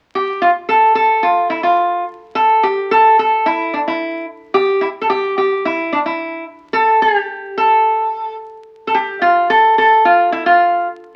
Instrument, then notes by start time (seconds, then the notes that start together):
resonator guitar played with a steel bar
0.15 G4
0.42 F4
0.69 A4
0.95 A4
1.23 F4
1.50 E4
1.63 F4
2.35 A4
2.63 G4
2.91 A4
3.19 A4
3.46 E4
3.74 D4
3.88 E4
4.54 G4
4.81 E4
5.01 A4
5.10 G4
5.38 G4
5.65 E4
5.93 D4
6.06 E4
6.73 A4
7.02 G4
7.58 A4
8.87 A4
8.95 G4
9.22 F4
9.50 A4
9.78 A4
10.05 F4
10.32 E4
10.46 F4